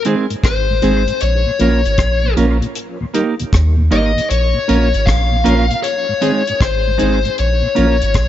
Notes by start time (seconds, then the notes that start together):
0.05 D#3 G#3 C4 D#4 G#4, closed hi-hat
0.30 G#2, closed hi-hat
0.44 G#1 C5, kick, cross-stick, closed hi-hat
0.70 G#2
0.82 G#1 D#3 G#3 C4 D#4 G#4, closed hi-hat
1.07 G#2, closed hi-hat
1.21 A#1 C#5, closed hi-hat
1.47 A#2
1.59 A#1 F3 A#3 C#4 F4 A#4, closed hi-hat
1.85 G#1, closed hi-hat
1.98 A#1, kick, cross-stick, closed hi-hat
2.23 A#2
2.36 A#1 F3 A#3 C#4 F4 A#4, closed hi-hat
2.62 A#2, closed hi-hat
2.76 closed hi-hat
3.01 D#2 A#2
3.14 G3 A#3 D#4 G4 A#4, closed hi-hat
3.40 D#2 A#2, closed hi-hat
3.53 D#2, kick, cross-stick, closed hi-hat
3.77 D#2 A#2
3.91 G#1 G3 A#3 D#4 G4 A#4 D#5, closed hi-hat
4.16 D#2 A#2, closed hi-hat
4.30 A#1 C#5, closed hi-hat
4.54 A#2
4.68 A#1 F3 A#3 C#4 F4 A#4, closed hi-hat
4.94 G#1, closed hi-hat
5.06 A#1 F5, kick, cross-stick, closed hi-hat
5.31 A#2
5.44 A#1 F3 A#3 C#4 F4 A#4, closed hi-hat
5.71 A#2, closed hi-hat
5.83 C#5, closed hi-hat
6.09 G#2
6.21 D#3 G#3 C4 D#4 G#4, closed hi-hat
6.47 G#2, closed hi-hat
6.61 G#1 C5, kick, cross-stick, closed hi-hat
6.87 G#2
6.98 D#3 G#3 C4 D#4 G#4, closed hi-hat
7.02 G#1
7.25 G#2, closed hi-hat
7.38 A#1 C#5, closed hi-hat
7.62 A#2
7.75 A#1 F3 A#3 C#4 F4 A#4, closed hi-hat
8.02 G#1, closed hi-hat
8.14 A#1, kick, cross-stick, closed hi-hat